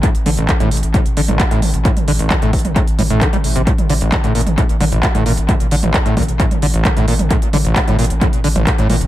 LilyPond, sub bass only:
\new Staff \with { instrumentName = "Sub bass" } { \clef bass \time 4/4 \key bes \lydian \tempo 4 = 132 r16 a,,16 a,,16 a,,16 r16 a,,16 a,,16 a,,16 r16 a,,16 a,,16 a,,16 r16 a,,16 a,,16 a,,16 | r16 a,,16 a,,16 a,,16 r16 a,,16 a,,16 a,,16 r16 a,,16 a,,16 a,,16 r16 a,,16 a,,16 a,,16 | r16 a,,16 a,,16 a,,16 r16 a,,16 a,,16 a,,16 r16 a,,16 a,,16 a,,16 r16 a,,16 a,,16 a,,16 | r16 a,,16 a,,16 a,,16 r16 a,,16 a,,16 a,,16 r16 a,,16 a,,16 a,,16 r16 a,,16 a,,16 a,,16 |
r16 a,,16 a,,16 a,,16 r16 a,,16 a,,16 a,,16 r16 a,,16 a,,16 a,,16 r16 a,,16 a,,16 a,,16 | }